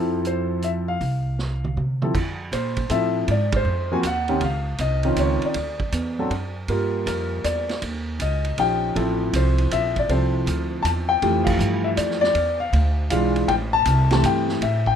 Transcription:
Already playing: F2 F3 C4 E4 A4
0.25 C5, closed hi-hat
0.62 E5, closed hi-hat
0.88 F5
1.01 C2, kick, open hi-hat
1.39 snare
1.64 mid tom
1.77 C3, mid tom
2.02 F3 C4 E4 A4, mid tom
2.14 F2, kick, crash
2.52 A#2 C5, kick, hi-hat pedal, ride
2.76 kick, ride
2.90 A2 F3 C4 E4 A4 E5, kick, hi-hat pedal, ride
3.28 G#2 D5, kick, ride
3.52 kick, ride
3.56 C5
3.65 F2
3.92 F3 A#3 C4 F#4 G#5
4.03 D#2, kick, hi-hat pedal, ride
4.07 F#5
4.28 D#3 C4 C#4 G4, ride
4.41 C#2 F5, kick, ride
4.78 C2 D#5, kick, hi-hat pedal, ride
5.03 D#3 C4 C#4 F4, ride
5.16 C#2 C#5, kick, hi-hat pedal, ride
5.42 D5, ride
5.54 D2, kick, ride
5.80 kick
5.92 E2, kick, hi-hat pedal, ride
6.19 F#3 C4 D4 A4
6.30 F#2, kick, ride
6.68 G2 G3 A#3 F4 A#4, kick, ride
7.06 F2 A#4, kick, hi-hat pedal, ride
7.44 E2 D5, kick, hi-hat pedal, ride
7.69 snare, ride
7.82 D#2, kick, ride
8.19 C#2 D#5, kick, hi-hat pedal, ride
8.45 ride
8.58 A#1 F3 C#4 D#4 G4 G5, kick, ride
8.95 A1 F3 C4 E4 A4, kick, ride
9.33 C2 C5, kick, hi-hat pedal, ride
9.58 ride
9.71 A#1 E5, kick, hi-hat pedal, ride
9.96 D5, kick, ride
10.09 C2 F3 C4 E4 A4 C5, kick, ride
10.46 D2, kick, hi-hat pedal, ride
10.83 E2 A5, kick, hi-hat pedal, ride
11.09 G5
11.22 F2 E3 F3 A3 G4, kick, ride
11.44 F5, kick, crash
11.59 G2, hi-hat pedal
11.84 E5
11.97 F2 D5, kick, hi-hat pedal, ride
12.11 snare
12.21 D5, snare
12.35 E2, kick, ride
12.60 F5
12.73 D2, kick, ride
13.10 B1 E3 G#3 D4 F4 F5, kick, hi-hat pedal, ride
13.36 ride
13.48 A1 G5, kick, ride
13.73 A5
13.85 C2, kick, hi-hat pedal, ride
14.11 E3 A3 C4 G4 A5, snare, ride
14.23 G2 G5, kick, hi-hat pedal, ride
14.49 snare
14.61 A2 E5, kick, ride
14.86 G5, kick

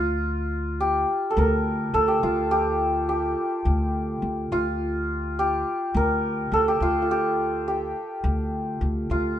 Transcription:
Already playing: D2 F4
0.80 G4
1.30 A4
1.37 D2 A#4
1.94 D2 A4
2.08 G4
2.23 D2 F4
2.51 G4
3.09 G4
3.65 D2
4.22 D2
4.52 D2 F4
5.39 G4
5.94 D2 A#4
6.52 D2 A4
6.68 G4
6.80 D2 F4
7.02 F4
7.11 G4
7.68 G4
8.24 D2
8.81 D2
9.10 D2 F4

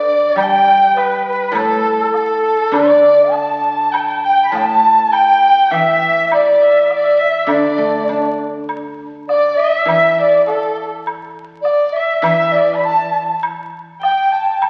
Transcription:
Already playing: D3 D5
0.36 G3 G5, high woodblock
0.41 G5 A5
0.50 G5
0.96 B4, low woodblock
1.25 B4
1.52 A2 A4, high woodblock
2.13 A4, low woodblock
2.71 D3 D5, high woodblock
3.31 A5, low woodblock
3.77 A5
3.92 G5, high woodblock
3.99 A5
4.08 G5
4.16 A5
4.23 G5
4.45 B5
4.51 A2 A5
4.55 G5, low woodblock
4.66 A5
5.12 G5, high woodblock
5.71 E3 E5, low woodblock
6.32 D5, high woodblock
6.47 D5
6.62 E5
6.90 D5, low woodblock
7.04 E5
7.18 E5
7.22 E5
7.47 D3 D5, high woodblock
7.78 A3
8.09 D4, high woodblock
8.69 high woodblock
9.28 D5, low woodblock
9.32 D5
9.57 E5
9.85 E3 E5, high woodblock
9.90 E5
10.11 E5
10.19 D5
10.46 A4, low woodblock
11.07 high woodblock
11.62 D5, low woodblock
11.93 E5
12.22 E3 E5, high woodblock
12.27 E5
12.52 D5
12.57 D5
12.75 B5
12.84 A5
13.43 high woodblock
14.01 G5, low woodblock
14.32 A5
14.62 high woodblock

